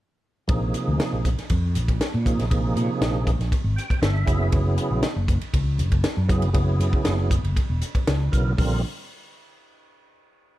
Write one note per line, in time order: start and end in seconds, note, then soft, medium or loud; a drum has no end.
0.48 0.73 A#1 medium
0.48 1.29 C3 medium
0.48 1.29 F3 medium
0.48 1.29 A#3 medium
0.48 1.29 D#4 medium
0.48 1.29 G#4 medium
0.48 kick loud
0.48 ride medium
0.74 hi-hat pedal medium
0.74 ride medium
0.87 0.99 D2 medium
1.00 snare loud
1.00 ride medium
1.13 1.36 A#1 medium
1.25 kick medium
1.25 hi-hat pedal medium
1.25 ride medium
1.39 muted fretless electric bass stroke soft
1.39 snare soft
1.39 ride medium
1.50 1.77 F2 medium
1.50 kick medium
1.50 ride medium
1.75 1.99 A#1 medium
1.75 hi-hat pedal medium
1.75 ride medium
1.88 kick medium
1.88 ride medium
2.01 snare medium
2.01 ride medium
2.14 2.37 A#2 medium
2.25 2.46 C3 medium
2.25 2.46 F3 medium
2.25 2.46 A#3 medium
2.25 2.46 D#4 medium
2.25 2.46 G#4 medium
2.25 kick medium
2.25 hi-hat pedal medium
2.25 ride medium
2.38 2.74 A#1 medium
2.38 snare soft
2.38 ride medium
2.50 3.32 C3 medium
2.50 3.32 F3 medium
2.50 3.32 A#3 medium
2.50 3.32 D#4 medium
2.50 3.32 G#4 medium
2.50 kick loud
2.50 ride medium
2.76 2.88 A#2 medium
2.76 hi-hat pedal medium
2.76 ride medium
3.01 3.37 A#1 medium
3.01 snare loud
3.01 ride medium
3.27 kick medium
3.27 hi-hat pedal medium
3.27 ride medium
3.39 3.51 A#1 medium
3.39 snare soft
3.39 ride soft
3.52 kick medium
3.52 ride medium
3.64 3.76 G#1 medium
3.76 4.00 G5 medium
3.76 hi-hat pedal medium
3.76 ride medium
3.90 muted fretless electric bass stroke soft
3.90 kick medium
3.90 ride medium
4.02 4.26 G1 medium
4.02 4.49 E5 medium
4.02 snare loud
4.02 ride medium
4.26 4.51 F#1 medium
4.26 5.08 C#3 medium
4.26 5.08 F#3 medium
4.26 5.08 B3 medium
4.26 5.08 E4 medium
4.26 5.08 G#4 medium
4.26 kick medium
4.26 hi-hat pedal medium
4.26 ride medium
4.52 4.77 F#1 medium
4.52 kick loud
4.52 ride medium
4.78 hi-hat pedal medium
4.78 ride medium
4.90 5.02 A#1 medium
5.03 snare loud
5.03 ride medium
5.16 5.40 F#1 medium
5.28 kick medium
5.28 hi-hat pedal medium
5.28 ride medium
5.41 muted fretless electric bass stroke soft
5.41 ride medium
5.54 5.80 C#2 medium
5.54 kick medium
5.54 ride medium
5.78 6.03 F#1 medium
5.78 hi-hat pedal medium
5.78 ride medium
5.92 kick medium
5.92 ride medium
6.04 snare loud
6.04 ride medium
6.17 6.41 F#2 medium
6.28 6.50 C#3 medium
6.28 6.50 F#3 medium
6.28 6.50 B3 medium
6.28 6.50 E4 medium
6.28 6.50 G#4 medium
6.28 kick medium
6.28 hi-hat pedal medium
6.28 ride medium
6.42 6.78 F#1 medium
6.42 ride medium
6.53 7.36 C#3 medium
6.53 7.36 F#3 medium
6.53 7.36 B3 medium
6.53 7.36 E4 medium
6.53 7.36 G#4 medium
6.53 kick loud
6.53 ride medium
6.79 6.92 F#2 medium
6.79 hi-hat pedal medium
6.79 ride medium
6.93 kick medium
7.05 7.42 F#1 medium
7.05 snare loud
7.05 ride medium
7.31 kick medium
7.31 hi-hat pedal medium
7.31 ride medium
7.43 7.55 F#1 medium
7.43 ride medium
7.57 kick medium
7.57 ride medium
7.69 7.81 E1 medium
7.82 hi-hat pedal medium
7.82 ride medium
7.95 muted fretless electric bass stroke soft
7.95 kick medium
7.95 ride medium
8.07 8.30 C#2 medium
8.07 snare loud
8.07 ride medium
8.32 8.56 B1 medium
8.32 8.53 C#3 medium
8.32 8.53 F#3 medium
8.32 8.53 B3 medium
8.32 8.53 E4 medium
8.32 8.53 A#4 medium
8.32 kick medium
8.32 hi-hat pedal medium
8.32 ride medium
8.57 8.82 A#1 medium
8.57 8.82 D3 medium
8.57 8.82 G3 medium
8.57 8.82 C4 medium
8.57 8.82 F4 medium
8.57 8.81 A#4 medium
8.57 kick medium
8.57 open hi-hat medium